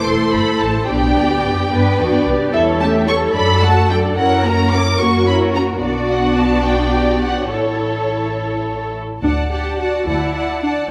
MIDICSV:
0, 0, Header, 1, 6, 480
1, 0, Start_track
1, 0, Key_signature, 2, "major"
1, 0, Tempo, 549451
1, 773, Time_signature, 6, 3, 24, 8
1, 5570, Tempo, 570885
1, 7970, Tempo, 554529
1, 9423, End_track
2, 0, Start_track
2, 0, Title_t, "Violin section"
2, 0, Program_c, 0, 48
2, 59, Note_on_c, 0, 84, 54
2, 291, Note_on_c, 0, 83, 64
2, 295, Note_off_c, 0, 84, 0
2, 529, Note_on_c, 0, 81, 55
2, 533, Note_off_c, 0, 83, 0
2, 772, Note_off_c, 0, 81, 0
2, 774, Note_on_c, 0, 79, 60
2, 1951, Note_off_c, 0, 79, 0
2, 2213, Note_on_c, 0, 76, 60
2, 2283, Note_off_c, 0, 76, 0
2, 2456, Note_on_c, 0, 81, 62
2, 2526, Note_off_c, 0, 81, 0
2, 2694, Note_on_c, 0, 85, 75
2, 2764, Note_off_c, 0, 85, 0
2, 2933, Note_on_c, 0, 83, 68
2, 3167, Note_off_c, 0, 83, 0
2, 3173, Note_on_c, 0, 81, 72
2, 3408, Note_on_c, 0, 79, 58
2, 3412, Note_off_c, 0, 81, 0
2, 3478, Note_off_c, 0, 79, 0
2, 3648, Note_on_c, 0, 78, 61
2, 3883, Note_off_c, 0, 78, 0
2, 3887, Note_on_c, 0, 82, 64
2, 4125, Note_on_c, 0, 86, 70
2, 4127, Note_off_c, 0, 82, 0
2, 4359, Note_on_c, 0, 85, 59
2, 4365, Note_off_c, 0, 86, 0
2, 4602, Note_off_c, 0, 85, 0
2, 4606, Note_on_c, 0, 83, 59
2, 4676, Note_off_c, 0, 83, 0
2, 4844, Note_on_c, 0, 82, 54
2, 4914, Note_off_c, 0, 82, 0
2, 5084, Note_on_c, 0, 74, 50
2, 5322, Note_off_c, 0, 74, 0
2, 5331, Note_on_c, 0, 78, 49
2, 5572, Note_off_c, 0, 78, 0
2, 5575, Note_on_c, 0, 81, 56
2, 5805, Note_on_c, 0, 79, 49
2, 5808, Note_off_c, 0, 81, 0
2, 6281, Note_off_c, 0, 79, 0
2, 6281, Note_on_c, 0, 78, 48
2, 6517, Note_off_c, 0, 78, 0
2, 6522, Note_on_c, 0, 73, 44
2, 7707, Note_off_c, 0, 73, 0
2, 7973, Note_on_c, 0, 81, 36
2, 8211, Note_off_c, 0, 81, 0
2, 8225, Note_on_c, 0, 81, 29
2, 8451, Note_off_c, 0, 81, 0
2, 8461, Note_on_c, 0, 81, 34
2, 8693, Note_off_c, 0, 81, 0
2, 8708, Note_on_c, 0, 81, 37
2, 8934, Note_off_c, 0, 81, 0
2, 8947, Note_on_c, 0, 81, 36
2, 9168, Note_off_c, 0, 81, 0
2, 9178, Note_on_c, 0, 81, 37
2, 9409, Note_off_c, 0, 81, 0
2, 9423, End_track
3, 0, Start_track
3, 0, Title_t, "Violin section"
3, 0, Program_c, 1, 48
3, 0, Note_on_c, 1, 72, 43
3, 49, Note_on_c, 1, 69, 41
3, 771, Note_off_c, 1, 72, 0
3, 773, Note_off_c, 1, 69, 0
3, 776, Note_on_c, 1, 74, 42
3, 777, Note_on_c, 1, 67, 42
3, 1483, Note_off_c, 1, 67, 0
3, 1490, Note_off_c, 1, 74, 0
3, 1497, Note_on_c, 1, 71, 47
3, 1500, Note_on_c, 1, 74, 41
3, 2199, Note_off_c, 1, 71, 0
3, 2200, Note_off_c, 1, 74, 0
3, 2212, Note_on_c, 1, 69, 47
3, 2212, Note_on_c, 1, 73, 49
3, 2434, Note_off_c, 1, 69, 0
3, 2435, Note_off_c, 1, 73, 0
3, 2447, Note_on_c, 1, 67, 43
3, 2449, Note_on_c, 1, 76, 43
3, 2686, Note_on_c, 1, 69, 41
3, 2686, Note_on_c, 1, 73, 44
3, 2690, Note_off_c, 1, 67, 0
3, 2691, Note_off_c, 1, 76, 0
3, 2921, Note_off_c, 1, 69, 0
3, 2929, Note_off_c, 1, 73, 0
3, 2931, Note_on_c, 1, 69, 42
3, 2933, Note_on_c, 1, 74, 43
3, 3154, Note_off_c, 1, 69, 0
3, 3155, Note_off_c, 1, 74, 0
3, 3171, Note_on_c, 1, 66, 43
3, 3174, Note_on_c, 1, 78, 42
3, 3409, Note_on_c, 1, 74, 40
3, 3411, Note_off_c, 1, 66, 0
3, 3413, Note_off_c, 1, 78, 0
3, 3413, Note_on_c, 1, 69, 39
3, 3646, Note_on_c, 1, 70, 49
3, 3648, Note_on_c, 1, 73, 48
3, 3650, Note_off_c, 1, 74, 0
3, 3651, Note_off_c, 1, 69, 0
3, 3870, Note_off_c, 1, 70, 0
3, 3871, Note_off_c, 1, 73, 0
3, 3889, Note_on_c, 1, 70, 44
3, 3890, Note_on_c, 1, 66, 41
3, 4117, Note_off_c, 1, 70, 0
3, 4127, Note_on_c, 1, 70, 38
3, 4128, Note_off_c, 1, 66, 0
3, 4130, Note_on_c, 1, 73, 41
3, 4358, Note_off_c, 1, 70, 0
3, 4367, Note_off_c, 1, 73, 0
3, 4369, Note_on_c, 1, 66, 44
3, 4369, Note_on_c, 1, 70, 45
3, 4596, Note_off_c, 1, 70, 0
3, 4606, Note_off_c, 1, 66, 0
3, 4606, Note_on_c, 1, 73, 40
3, 4607, Note_on_c, 1, 70, 39
3, 4828, Note_off_c, 1, 70, 0
3, 4828, Note_off_c, 1, 73, 0
3, 4843, Note_on_c, 1, 66, 35
3, 4844, Note_on_c, 1, 70, 37
3, 5074, Note_off_c, 1, 66, 0
3, 5083, Note_on_c, 1, 74, 53
3, 5084, Note_on_c, 1, 66, 47
3, 5085, Note_off_c, 1, 70, 0
3, 6009, Note_off_c, 1, 66, 0
3, 6041, Note_on_c, 1, 67, 38
3, 6488, Note_off_c, 1, 74, 0
3, 6522, Note_off_c, 1, 67, 0
3, 6524, Note_on_c, 1, 69, 38
3, 6525, Note_off_c, 1, 69, 0
3, 6525, Note_on_c, 1, 69, 41
3, 7775, Note_off_c, 1, 69, 0
3, 7972, Note_on_c, 1, 74, 35
3, 7972, Note_on_c, 1, 78, 35
3, 8198, Note_off_c, 1, 78, 0
3, 8199, Note_off_c, 1, 74, 0
3, 8208, Note_on_c, 1, 78, 35
3, 8209, Note_on_c, 1, 74, 32
3, 8448, Note_off_c, 1, 78, 0
3, 8449, Note_off_c, 1, 74, 0
3, 8459, Note_on_c, 1, 74, 35
3, 8460, Note_on_c, 1, 78, 33
3, 8687, Note_off_c, 1, 78, 0
3, 8688, Note_off_c, 1, 74, 0
3, 8697, Note_on_c, 1, 78, 35
3, 8699, Note_on_c, 1, 74, 37
3, 8922, Note_off_c, 1, 78, 0
3, 8924, Note_off_c, 1, 74, 0
3, 8932, Note_on_c, 1, 78, 34
3, 8934, Note_on_c, 1, 74, 33
3, 9157, Note_off_c, 1, 74, 0
3, 9162, Note_off_c, 1, 78, 0
3, 9168, Note_on_c, 1, 74, 38
3, 9172, Note_on_c, 1, 78, 33
3, 9404, Note_off_c, 1, 74, 0
3, 9406, Note_off_c, 1, 78, 0
3, 9423, End_track
4, 0, Start_track
4, 0, Title_t, "Cello section"
4, 0, Program_c, 2, 48
4, 0, Note_on_c, 2, 69, 48
4, 743, Note_off_c, 2, 69, 0
4, 770, Note_on_c, 2, 67, 49
4, 1479, Note_off_c, 2, 67, 0
4, 1494, Note_on_c, 2, 71, 54
4, 1735, Note_off_c, 2, 71, 0
4, 1735, Note_on_c, 2, 66, 46
4, 1974, Note_off_c, 2, 66, 0
4, 1975, Note_on_c, 2, 67, 49
4, 2212, Note_on_c, 2, 69, 60
4, 2213, Note_off_c, 2, 67, 0
4, 3650, Note_off_c, 2, 69, 0
4, 3652, Note_on_c, 2, 70, 55
4, 4353, Note_off_c, 2, 70, 0
4, 4365, Note_on_c, 2, 66, 48
4, 5075, Note_off_c, 2, 66, 0
4, 5085, Note_on_c, 2, 66, 48
4, 6494, Note_off_c, 2, 66, 0
4, 6521, Note_on_c, 2, 69, 39
4, 7610, Note_off_c, 2, 69, 0
4, 7974, Note_on_c, 2, 38, 43
4, 8591, Note_off_c, 2, 38, 0
4, 8700, Note_on_c, 2, 38, 46
4, 9306, Note_off_c, 2, 38, 0
4, 9423, End_track
5, 0, Start_track
5, 0, Title_t, "Viola section"
5, 0, Program_c, 3, 48
5, 0, Note_on_c, 3, 64, 45
5, 47, Note_on_c, 3, 57, 42
5, 745, Note_off_c, 3, 64, 0
5, 757, Note_off_c, 3, 57, 0
5, 777, Note_on_c, 3, 62, 47
5, 779, Note_on_c, 3, 59, 47
5, 1481, Note_off_c, 3, 59, 0
5, 1483, Note_off_c, 3, 62, 0
5, 1492, Note_on_c, 3, 59, 48
5, 1493, Note_on_c, 3, 62, 50
5, 2196, Note_off_c, 3, 59, 0
5, 2197, Note_off_c, 3, 62, 0
5, 2213, Note_on_c, 3, 55, 48
5, 2215, Note_on_c, 3, 64, 45
5, 2435, Note_off_c, 3, 55, 0
5, 2436, Note_off_c, 3, 64, 0
5, 2458, Note_on_c, 3, 61, 42
5, 2461, Note_on_c, 3, 57, 43
5, 2694, Note_on_c, 3, 55, 39
5, 2695, Note_off_c, 3, 61, 0
5, 2695, Note_on_c, 3, 64, 41
5, 2697, Note_off_c, 3, 57, 0
5, 2931, Note_on_c, 3, 54, 48
5, 2931, Note_on_c, 3, 62, 42
5, 2933, Note_off_c, 3, 55, 0
5, 2933, Note_off_c, 3, 64, 0
5, 3154, Note_off_c, 3, 54, 0
5, 3154, Note_off_c, 3, 62, 0
5, 3172, Note_on_c, 3, 57, 42
5, 3173, Note_on_c, 3, 66, 41
5, 3411, Note_on_c, 3, 62, 37
5, 3412, Note_off_c, 3, 57, 0
5, 3412, Note_off_c, 3, 66, 0
5, 3412, Note_on_c, 3, 54, 37
5, 3651, Note_off_c, 3, 54, 0
5, 3651, Note_off_c, 3, 62, 0
5, 3651, Note_on_c, 3, 61, 43
5, 3652, Note_on_c, 3, 64, 44
5, 3873, Note_off_c, 3, 61, 0
5, 3873, Note_off_c, 3, 64, 0
5, 3894, Note_on_c, 3, 58, 42
5, 3895, Note_on_c, 3, 61, 42
5, 4124, Note_off_c, 3, 61, 0
5, 4130, Note_off_c, 3, 58, 0
5, 4131, Note_on_c, 3, 64, 42
5, 4134, Note_on_c, 3, 61, 39
5, 4361, Note_off_c, 3, 61, 0
5, 4368, Note_off_c, 3, 64, 0
5, 4371, Note_on_c, 3, 58, 39
5, 4371, Note_on_c, 3, 61, 46
5, 4601, Note_off_c, 3, 61, 0
5, 4607, Note_off_c, 3, 58, 0
5, 4611, Note_on_c, 3, 61, 41
5, 4611, Note_on_c, 3, 64, 44
5, 4831, Note_off_c, 3, 61, 0
5, 4831, Note_off_c, 3, 64, 0
5, 4852, Note_on_c, 3, 61, 35
5, 4854, Note_on_c, 3, 58, 36
5, 5088, Note_on_c, 3, 59, 45
5, 5088, Note_on_c, 3, 62, 53
5, 5089, Note_off_c, 3, 61, 0
5, 5090, Note_off_c, 3, 58, 0
5, 6490, Note_off_c, 3, 59, 0
5, 6490, Note_off_c, 3, 62, 0
5, 6524, Note_on_c, 3, 64, 32
5, 6525, Note_off_c, 3, 64, 0
5, 6525, Note_on_c, 3, 64, 40
5, 7775, Note_off_c, 3, 64, 0
5, 7975, Note_on_c, 3, 62, 46
5, 8044, Note_off_c, 3, 62, 0
5, 8222, Note_on_c, 3, 67, 51
5, 8455, Note_off_c, 3, 67, 0
5, 8459, Note_on_c, 3, 66, 43
5, 8697, Note_off_c, 3, 66, 0
5, 8702, Note_on_c, 3, 64, 55
5, 9174, Note_off_c, 3, 64, 0
5, 9176, Note_on_c, 3, 62, 46
5, 9245, Note_off_c, 3, 62, 0
5, 9423, End_track
6, 0, Start_track
6, 0, Title_t, "Double bass section"
6, 0, Program_c, 4, 48
6, 50, Note_on_c, 4, 28, 49
6, 120, Note_off_c, 4, 28, 0
6, 292, Note_on_c, 4, 31, 45
6, 362, Note_off_c, 4, 31, 0
6, 532, Note_on_c, 4, 33, 46
6, 769, Note_off_c, 4, 33, 0
6, 770, Note_on_c, 4, 35, 51
6, 1007, Note_off_c, 4, 35, 0
6, 1012, Note_on_c, 4, 38, 46
6, 1254, Note_off_c, 4, 38, 0
6, 1256, Note_on_c, 4, 42, 47
6, 1326, Note_off_c, 4, 42, 0
6, 1494, Note_on_c, 4, 43, 49
6, 1730, Note_off_c, 4, 43, 0
6, 1738, Note_on_c, 4, 40, 48
6, 1808, Note_off_c, 4, 40, 0
6, 1972, Note_on_c, 4, 36, 49
6, 2042, Note_off_c, 4, 36, 0
6, 2213, Note_on_c, 4, 40, 61
6, 2847, Note_off_c, 4, 40, 0
6, 2932, Note_on_c, 4, 42, 57
6, 3566, Note_off_c, 4, 42, 0
6, 3649, Note_on_c, 4, 42, 58
6, 4281, Note_off_c, 4, 42, 0
6, 4371, Note_on_c, 4, 42, 55
6, 5002, Note_off_c, 4, 42, 0
6, 5088, Note_on_c, 4, 35, 47
6, 6490, Note_off_c, 4, 35, 0
6, 6525, Note_on_c, 4, 33, 34
6, 7775, Note_off_c, 4, 33, 0
6, 7975, Note_on_c, 4, 38, 45
6, 8592, Note_off_c, 4, 38, 0
6, 8697, Note_on_c, 4, 38, 47
6, 9304, Note_off_c, 4, 38, 0
6, 9423, End_track
0, 0, End_of_file